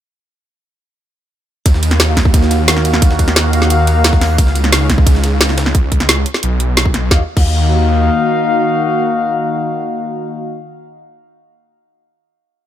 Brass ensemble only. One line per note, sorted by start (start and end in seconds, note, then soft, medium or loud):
2.08 2.14 D#4 medium
2.08 2.14 F#4 medium
2.08 2.14 F5 loud
3.45 4.37 D#4 loud
3.45 4.37 F#4 medium
3.45 4.37 F5 loud
4.81 4.87 C#4 loud
4.81 4.87 G#4 medium
4.81 4.87 F5 loud
7.11 7.21 D#4 medium
7.11 7.21 F#4 medium
7.11 7.21 F5 loud
7.37 10.60 D#4 loud
7.37 10.60 F#4 medium
7.37 10.60 F5 loud